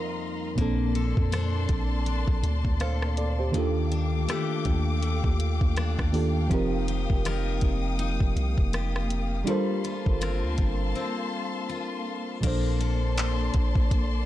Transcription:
0.00 0.67 F2 medium
0.00 0.58 F3 medium
0.00 0.60 G3 medium
0.00 0.57 A#3 medium
0.00 0.58 A#3 medium
0.00 0.61 C4 medium
0.00 0.18 D#4 medium
0.00 0.17 A#4 loud
0.00 0.57 D#5 medium
0.00 0.54 F5 medium
0.00 0.55 A#5 medium
0.00 0.55 C6 medium
0.55 1.14 A#1 loud
0.55 3.49 A#2 medium
0.55 3.50 A#3 medium
0.55 3.51 A#3 medium
0.55 4.08 A#3 medium
0.55 3.51 C4 medium
0.55 3.51 D5 medium
0.55 3.51 A5 medium
0.55 3.51 C6 medium
0.55 kick loud
0.55 closed hi-hat medium
0.60 3.51 D4 medium
0.60 2.78 A4 medium
0.95 1.32 A4 medium
0.95 closed hi-hat medium
1.17 1.67 F2 loud
1.17 kick medium
1.32 2.06 D4 medium
1.32 2.80 A4 medium
1.32 3.64 C5 medium
1.32 cross-stick loud
1.32 closed hi-hat medium
1.69 2.26 A#1 loud
1.69 kick medium
1.69 closed hi-hat medium
2.06 3.91 D4 medium
2.06 closed hi-hat medium
2.28 2.42 A#1 loud
2.28 kick medium
2.43 2.64 D2 loud
2.43 closed hi-hat medium
2.65 3.51 D2 medium
2.65 kick medium
2.80 4.29 A4 medium
2.80 3.16 C5 medium
2.80 3.16 F5 medium
2.80 cross-stick loud
2.80 closed hi-hat medium
3.02 cross-stick loud
3.17 3.38 A4 medium
3.17 3.38 D5 medium
3.17 closed hi-hat medium
3.39 3.55 G4 medium
3.39 3.74 C5 medium
3.52 4.14 D#2 loud
3.52 6.08 D#3 medium
3.52 6.50 D#3 medium
3.52 6.09 A#3 medium
3.52 6.10 D4 medium
3.52 6.10 F4 medium
3.52 6.48 A4 medium
3.52 9.43 F5 medium
3.52 9.43 G5 medium
3.52 6.48 D6 medium
3.52 closed hi-hat medium
3.56 6.11 G4 medium
3.56 6.11 A4 medium
3.91 4.28 D4 medium
3.91 closed hi-hat medium
4.13 4.28 D2 loud
4.28 5.02 A3 medium
4.28 5.76 D4 medium
4.28 6.88 G4 medium
4.28 cross-stick loud
4.28 closed hi-hat medium
4.65 5.22 D#2 loud
4.65 kick medium
4.65 closed hi-hat medium
5.03 6.59 A3 medium
5.03 closed hi-hat medium
5.24 5.60 D#2 loud
5.24 kick medium
5.40 closed hi-hat medium
5.61 5.97 D#2 loud
5.61 kick medium
5.77 6.59 D4 medium
5.77 cross-stick loud
5.77 closed hi-hat medium
5.99 6.49 D#2 loud
5.99 kick medium
5.99 cross-stick loud
6.12 6.50 D#3 medium
6.12 6.50 A#3 medium
6.12 6.51 D4 medium
6.12 6.51 F4 medium
6.12 6.51 G4 medium
6.12 6.51 A4 medium
6.12 open hi-hat medium
6.48 7.07 F1 loud
6.48 9.42 F3 medium
6.48 9.50 F3 medium
6.48 12.39 A#3 medium
6.48 9.42 C4 medium
6.48 9.43 D#4 medium
6.48 9.44 D#6 medium
6.48 kick medium
6.48 closed hi-hat medium
6.53 9.44 G4 medium
6.53 9.45 A#4 medium
6.88 7.25 G4 medium
6.88 closed hi-hat medium
7.10 7.60 F1 loud
7.10 kick medium
7.25 7.98 D#4 medium
7.25 8.73 G4 medium
7.25 10.22 A#4 medium
7.25 cross-stick loud
7.25 closed hi-hat medium
7.61 8.18 F1 loud
7.61 kick medium
7.61 closed hi-hat medium
7.99 9.56 D#4 medium
7.99 closed hi-hat medium
8.20 8.36 F1 loud
8.20 kick medium
8.36 8.57 C2 loud
8.36 closed hi-hat medium
8.58 9.44 F1 loud
8.58 kick medium
8.73 9.84 G4 medium
8.73 cross-stick loud
8.73 closed hi-hat medium
8.96 cross-stick loud
9.10 closed hi-hat medium
9.44 12.38 G3 medium
9.44 12.43 G3 medium
9.44 12.39 D4 medium
9.44 12.39 F4 medium
9.44 12.40 A4 medium
9.44 12.40 F5 medium
9.44 12.40 A5 medium
9.44 12.40 C6 medium
9.44 closed hi-hat medium
9.49 12.40 A#4 medium
9.49 12.41 C5 loud
9.84 10.21 F4 medium
9.84 closed hi-hat medium
10.06 10.44 G1 loud
10.06 kick medium
10.21 10.95 C4 medium
10.21 11.69 F4 medium
10.21 12.83 A#4 medium
10.21 cross-stick loud
10.21 closed hi-hat medium
10.43 10.57 D2 medium
10.58 10.94 G1 loud
10.58 kick medium
10.58 closed hi-hat medium
10.95 14.26 C4 medium
11.69 12.80 F4 medium
12.41 13.51 A#1 loud
12.41 14.26 A#2 medium
12.41 14.26 F3 medium
12.41 14.26 A#3 medium
12.41 14.26 D4 medium
12.41 14.26 D5 medium
12.41 14.26 A5 medium
12.41 14.26 C6 medium
12.41 kick loud
12.41 closed hi-hat medium
12.41 crash medium
12.45 14.26 A4 medium
12.45 14.26 C5 medium
12.80 14.26 A4 medium
12.80 closed hi-hat medium
13.18 14.26 C5 medium
13.18 clap loud
13.18 closed hi-hat medium
13.54 14.26 A#1 loud
13.54 kick medium
13.54 closed hi-hat medium
13.75 kick medium
13.91 kick medium
13.91 closed hi-hat medium

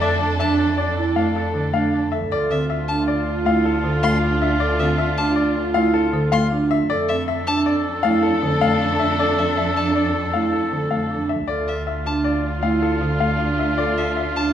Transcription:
0.00 2.19 F2 medium
0.00 2.08 D4 medium
0.00 0.15 D4 medium
0.00 2.08 A4 medium
0.00 0.26 D5 medium
0.00 0.16 E5 medium
0.20 0.34 D4 medium
0.40 0.65 D4 medium
0.40 0.53 D4 medium
0.40 0.65 E5 medium
0.40 0.54 A5 medium
0.59 0.72 D4 medium
0.78 0.91 D4 medium
0.78 1.03 D5 medium
0.96 1.10 D4 medium
0.96 1.22 E4 medium
1.16 1.41 A3 medium
1.16 1.30 D4 soft
1.16 1.41 F5 medium
1.35 1.49 D4 soft
1.35 1.60 A4 medium
1.54 1.79 D3 medium
1.54 1.68 D4 soft
1.73 1.98 A3 medium
1.73 1.98 D4 medium
1.73 1.88 D4 soft
1.73 1.98 F5 medium
1.93 2.06 D4 soft
2.12 2.30 A4 medium
2.12 2.37 E5 medium
2.30 6.78 D2 medium
2.30 6.66 D4 medium
2.30 6.66 F4 medium
2.30 6.67 F4 medium
2.30 2.56 A4 medium
2.30 2.56 D5 medium
2.50 2.75 D3 medium
2.50 2.75 C4 medium
2.50 2.65 E5 medium
2.70 2.94 E5 medium
2.88 3.13 D4 medium
2.88 3.03 A5 medium
3.08 3.32 D5 medium
3.28 3.52 F4 medium
3.46 3.70 A3 medium
3.46 3.71 E4 medium
3.46 3.71 F5 medium
3.65 3.90 A4 medium
3.84 4.09 D3 medium
3.84 4.09 A4 medium
4.03 4.28 A3 medium
4.03 4.28 F5 medium
4.03 4.17 C6 medium
4.23 4.47 D4 medium
4.42 4.66 E5 medium
4.60 4.85 A4 medium
4.60 4.85 D5 medium
4.79 5.04 D3 medium
4.79 5.04 C4 medium
4.79 4.94 E5 medium
4.98 5.23 E5 medium
5.18 5.43 D4 medium
5.18 5.32 A5 medium
5.36 5.61 D5 medium
5.56 5.81 F4 medium
5.74 6.00 A3 medium
5.74 6.00 E4 medium
5.74 6.00 F5 medium
5.94 6.19 A4 medium
6.13 6.38 D3 medium
6.13 6.38 A4 medium
6.32 6.57 A3 medium
6.32 6.57 F5 medium
6.32 6.47 C6 medium
6.52 6.76 D4 medium
6.71 6.95 E5 medium
6.89 11.37 F2 medium
6.89 11.25 D4 medium
6.89 11.25 A4 medium
6.89 7.15 A4 medium
6.89 11.25 A4 medium
6.89 7.14 D5 medium
7.09 7.34 C4 medium
7.09 7.23 E5 medium
7.28 7.53 E5 medium
7.47 7.72 D4 medium
7.47 7.61 A5 medium
7.66 7.91 D5 medium
8.03 8.29 A3 medium
8.03 8.29 E4 medium
8.03 8.29 F5 medium
8.23 8.48 A4 medium
8.43 8.67 D3 medium
8.43 8.67 A4 medium
8.61 8.86 A3 medium
8.61 8.86 F5 medium
8.81 9.06 D4 medium
9.00 9.24 E5 medium
9.19 9.44 A4 medium
9.19 9.44 D5 medium
9.38 9.63 C4 medium
9.38 9.52 E5 medium
9.57 9.82 E5 medium
9.76 10.01 D4 medium
9.76 9.91 A5 medium
9.95 10.20 D5 medium
10.33 10.59 A3 medium
10.33 10.59 E4 medium
10.33 10.58 F5 medium
10.53 10.78 A4 medium
10.72 10.97 D3 medium
10.72 10.97 A4 medium
10.91 11.16 A3 medium
10.91 11.16 F5 medium
11.11 11.35 D4 medium
11.29 11.54 E5 medium
11.48 14.53 D2 medium
11.48 14.53 D4 medium
11.48 14.53 F4 medium
11.48 11.73 A4 medium
11.48 11.73 D5 medium
11.68 11.82 E5 medium
11.87 12.11 E5 medium
12.06 12.31 D4 medium
12.06 12.20 A5 medium
12.24 12.49 D5 medium
12.63 12.88 A3 medium
12.63 12.88 E4 medium
12.63 12.88 F5 medium
12.82 13.07 A4 medium
13.01 13.26 D3 medium
13.01 13.26 A4 medium
13.20 13.45 A3 medium
13.20 13.45 F5 medium
13.40 13.64 D4 medium
13.59 13.83 E5 medium
13.78 14.03 A4 medium
13.78 14.02 D5 medium
13.98 14.12 E5 medium
14.17 14.41 E5 medium
14.35 14.53 D4 medium
14.35 14.50 A5 medium

